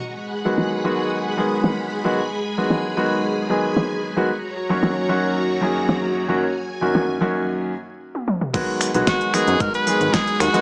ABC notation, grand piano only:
X:1
M:4/4
L:1/16
Q:1/4=113
K:G#m
V:1 name="Grand piano" clef=bass
z3 [D,F,G,B,F]3 [D,F,G,B,F]4 [D,F,G,B,G]4- [D,F,G,B,G] [D,F,G,B,F] | z3 [D,F,G,B,F]3 [D,F,G,B,F]4 [D,F,G,B,G]4- [D,F,G,B,G] [D,F,G,B,F] | z3 [F,,D,F,A,CF]3 [F,,D,F,A,CF]4 [F,,D,F,A,CG]4- [F,,D,F,A,CG] [F,,D,F,A,CF] | z3 [F,,D,F,A,CF]3 [F,,D,F,A,CF]4 z6 |
[D,F,G,B,F]3 [D,F,G,B,F]3 [D,F,G,B,F]4 [D,F,G,B,G]4- [D,F,G,B,G] [D,F,G,B,F] |]